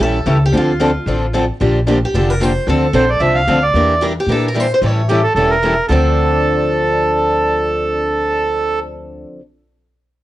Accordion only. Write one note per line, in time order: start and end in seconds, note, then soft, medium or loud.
2.95 3.10 C5 medium
3.10 3.21 D5 medium
3.20 3.36 E5 medium
3.35 3.63 F5 medium
3.63 4.06 D5 medium
5.09 5.23 G4 medium
5.23 5.33 A4 medium
5.35 5.51 A4 medium
5.50 5.86 A#4 medium
5.88 8.79 A4 medium